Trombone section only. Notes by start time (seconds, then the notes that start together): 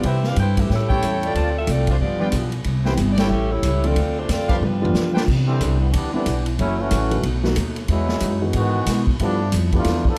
5.47 D3 E3 G3 C4
5.80 D3 E3 G3 B3
5.93 E3 G3 B3 D4
6.13 E3 G3 B3 D4
6.58 F#3 A3 C#4 E4
6.79 E3 A3 C#4 F#4
7.89 F#3 G#3 B3 E4
8.55 D#3 G#3 B3 F#4
9.21 F3 A3 B3 D4
9.75 A3 B3 D4 F4
10.07 F3 B3 D4 A4